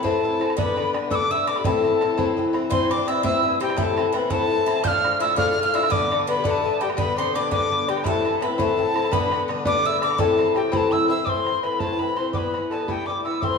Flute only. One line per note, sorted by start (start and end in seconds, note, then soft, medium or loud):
0.04 0.58 A4 medium
0.57 0.94 B4 medium
1.06 1.12 E5 soft
1.10 1.30 D5 medium
1.57 1.65 G4 medium
1.64 2.37 A4 loud
2.71 2.92 C5 medium
2.90 3.25 D5 medium
3.23 3.62 E5 medium
3.60 3.77 G4 medium
3.77 4.15 A4 medium
4.13 4.32 B4 loud
4.30 4.84 A4 medium
4.84 5.22 F5 loud
5.20 5.37 E5 loud
5.38 5.50 F5 loud
5.63 5.86 F5 medium
5.85 5.92 E5 medium
5.91 6.27 D5 loud
6.27 6.37 B4 medium
6.38 6.45 G4 medium
6.44 6.81 A4 medium
6.82 6.97 G4 medium
6.98 7.19 B4 medium
7.17 7.34 C5 medium
7.34 7.50 D5 medium
7.50 7.90 D5 medium
7.89 8.07 G4 medium
8.06 8.41 A4 medium
8.42 8.51 B4 medium
8.52 8.60 B4 soft
8.59 8.95 A4 medium
8.96 9.13 A4 medium
9.12 9.49 B4 medium
9.65 9.84 D5 medium
10.19 10.53 A4 loud
10.56 10.75 G4 medium
10.73 11.11 A4 medium
11.09 11.28 E5 medium
11.26 11.65 C5 medium
11.63 11.82 B4 medium
11.81 12.01 A4 medium
12.00 12.19 B4 medium
12.17 12.36 C5 medium
12.34 12.72 B4 medium
12.70 12.89 A4 medium
12.87 13.09 G4 medium
13.07 13.24 D5 medium
13.24 13.43 E5 medium
13.42 13.58 C5 medium